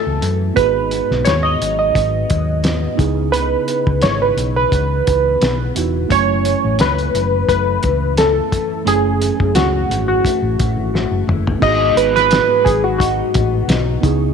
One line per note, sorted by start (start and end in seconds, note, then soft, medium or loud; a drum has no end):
0.00 0.56 F#2 medium
0.00 0.20 E3 medium
0.00 0.52 A3 medium
0.00 0.64 A3 medium
0.00 0.52 C#4 medium
0.00 0.57 C#4 soft
0.00 0.53 E4 medium
0.00 0.54 F#4 medium
0.00 0.38 A4 medium
0.07 0.19 C#2 medium
0.21 0.50 F#2 medium
0.21 0.64 E3 medium
0.21 closed hi-hat medium
0.54 1.00 G#1 medium
0.54 3.07 G#2 medium
0.54 2.94 B3 medium
0.54 2.95 D#4 medium
0.54 1.25 D#4 medium
0.54 2.95 F#4 medium
0.54 1.28 B4 medium
0.54 kick medium
0.54 closed hi-hat medium
0.59 2.96 G#4 medium
0.91 1.94 B3 medium
0.91 closed hi-hat medium
1.11 1.23 B1 medium
1.11 snare soft
1.25 1.54 D#2 medium
1.25 1.45 C#4 medium
1.25 1.45 C#5 medium
1.25 snare loud
1.25 closed hi-hat medium
1.43 3.07 D#4 soft
1.43 1.76 D#5 medium
1.61 1.89 G#1 medium
1.61 2.28 F#3 medium
1.61 closed hi-hat medium
1.79 2.95 D#5 medium
1.95 2.23 G#1 loud
1.95 2.63 B3 medium
1.95 kick medium
1.95 closed hi-hat medium
2.29 2.86 D#2 medium
2.29 3.06 F#3 medium
2.29 kick medium
2.29 closed hi-hat medium
2.64 3.36 B3 medium
2.64 snare loud
2.64 closed hi-hat medium
2.96 3.54 C#2 medium
2.96 3.32 C#3 medium
2.96 5.70 B3 medium
2.96 5.71 D#4 medium
2.96 5.72 E4 medium
2.96 kick medium
2.96 closed hi-hat medium
3.00 5.72 G#4 medium
3.32 6.10 C#3 medium
3.32 4.02 D#4 medium
3.32 4.04 B4 loud
3.32 closed hi-hat medium
3.68 4.71 B3 soft
3.68 closed hi-hat medium
3.87 4.04 C#2 medium
3.87 kick medium
4.02 4.30 G#1 medium
4.02 6.09 D#4 medium
4.02 4.22 C#5 medium
4.02 snare loud
4.02 closed hi-hat medium
4.22 4.36 B4 medium
4.37 4.65 B1 medium
4.37 5.06 E3 soft
4.37 closed hi-hat medium
4.56 5.72 B4 medium
4.72 5.00 C#2 loud
4.72 5.40 B3 medium
4.72 kick medium
4.72 closed hi-hat medium
5.06 5.35 C#2 medium
5.06 5.75 E3 medium
5.06 kick medium
5.06 closed hi-hat medium
5.41 5.69 B1 medium
5.41 6.18 B3 medium
5.41 snare loud
5.41 closed hi-hat medium
5.75 6.04 E1 medium
5.75 7.14 E3 medium
5.75 6.10 B3 medium
5.75 6.10 D#4 medium
5.75 6.11 E4 soft
5.75 6.11 F#4 medium
5.75 closed hi-hat medium
6.09 6.53 F#1 medium
6.09 8.84 F#2 medium
6.09 8.82 A3 medium
6.09 6.78 C#4 medium
6.09 8.82 C#4 medium
6.09 8.83 E4 medium
6.09 6.82 C#5 loud
6.09 kick medium
6.09 closed hi-hat medium
6.14 8.84 G#5 medium
6.45 7.47 A3 medium
6.45 closed hi-hat medium
6.65 6.80 A1 medium
6.79 7.07 C#2 medium
6.79 8.85 C#4 medium
6.79 7.48 B4 medium
6.79 snare loud
6.79 closed hi-hat medium
6.98 closed hi-hat soft
7.14 7.42 F#1 loud
7.14 7.83 E3 medium
7.14 closed hi-hat medium
7.48 7.76 F#1 medium
7.48 8.16 A3 medium
7.48 8.20 B4 medium
7.48 kick medium
7.48 closed hi-hat medium
7.83 8.39 C#2 medium
7.83 8.51 E3 medium
7.83 kick medium
7.83 closed hi-hat medium
8.18 9.20 A3 medium
8.18 8.83 A4 medium
8.18 snare medium
8.18 closed hi-hat medium
8.52 9.88 E3 medium
8.52 kick medium
8.52 closed hi-hat medium
8.85 9.29 F#1 medium
8.85 11.61 F#2 medium
8.85 11.57 A3 medium
8.85 9.54 C#4 medium
8.85 11.58 C#4 medium
8.85 11.59 E4 medium
8.85 9.58 G#4 medium
8.85 closed hi-hat medium
8.90 11.60 G#4 medium
9.21 10.23 A3 medium
9.21 closed hi-hat medium
9.40 9.52 F#1 medium
9.40 kick medium
9.55 9.82 C#2 medium
9.55 11.70 C#4 medium
9.55 10.07 F#4 medium
9.55 snare loud
9.55 closed hi-hat medium
9.89 10.17 G#1 medium
9.89 10.57 E3 medium
9.89 closed hi-hat medium
10.08 11.23 F#4 medium
10.25 10.93 A3 medium
10.25 kick medium
10.25 closed hi-hat medium
10.42 10.55 A1 medium
10.59 10.75 A1 medium
10.59 11.27 E3 medium
10.59 kick medium
10.59 closed hi-hat medium
10.77 11.05 G#1 medium
10.94 11.70 A3 medium
10.94 snare soft
11.11 11.24 F#1 medium
11.27 11.55 F#1 medium
11.27 11.70 E3 medium
11.27 mid tom medium
11.47 floor tom medium
11.60 11.90 G#1 medium
11.60 14.11 G#2 medium
11.60 13.98 B3 medium
11.60 13.99 D#4 medium
11.60 14.00 F#4 medium
11.60 11.95 D#5 loud
11.60 kick loud
11.60 crash medium
11.64 14.00 G#4 medium
11.95 12.39 G#1 medium
11.95 12.65 B3 medium
11.95 12.15 B4 medium
11.95 closed hi-hat medium
12.16 12.67 B4 loud
12.16 snare soft
12.16 closed hi-hat soft
12.31 14.11 F#3 medium
12.31 snare loud
12.31 closed hi-hat medium
12.65 13.21 G#1 medium
12.65 13.34 B3 medium
12.65 12.85 G#4 medium
12.65 kick medium
12.65 closed hi-hat medium
12.84 12.97 F#4 medium
12.98 13.68 D#4 medium
12.98 13.98 F#4 medium
12.98 kick medium
12.98 closed hi-hat medium
13.34 13.62 A1 medium
13.34 14.34 B3 medium
13.34 kick medium
13.34 closed hi-hat medium
13.68 13.96 B1 medium
13.68 14.34 D#4 medium
13.68 snare loud
13.68 closed hi-hat medium
14.01 14.31 C#2 medium
14.01 14.34 C#3 medium
14.01 14.34 B3 medium
14.01 14.34 D#4 medium
14.01 14.34 E4 medium
14.01 kick medium
14.01 closed hi-hat medium
14.06 14.34 G#4 medium